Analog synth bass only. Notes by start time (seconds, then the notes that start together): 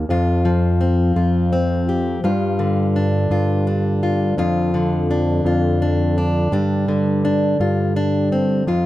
0.09 F2
1.16 F2
2.24 G2
3.31 G2
4.38 F2
5.45 F2
6.52 G2
7.60 G2
8.67 F2